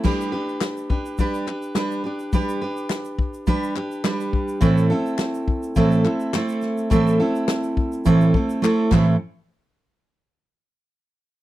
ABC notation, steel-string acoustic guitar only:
X:1
M:4/4
L:1/8
Q:"Swing 16ths" 1/4=105
K:Am
V:1 name="Steel-string acoustic guitar"
[G,DGB] [DGB]2 [DGB] [G,DGB] [DGB] [G,DGB] [DGB] | [G,DGB] [DGB]3 [G,DGB] [DGB] [G,DGB]2 | [A,,E,A,CEA] [A,CEA]3 [A,,E,A,CEA] [A,CEA] [A,CEA]2 | [A,,E,A,CEA] [A,CEA]3 [A,,E,A,CEA] [A,CEA] [A,CEA] [A,,E,A,CEA] |
z8 |]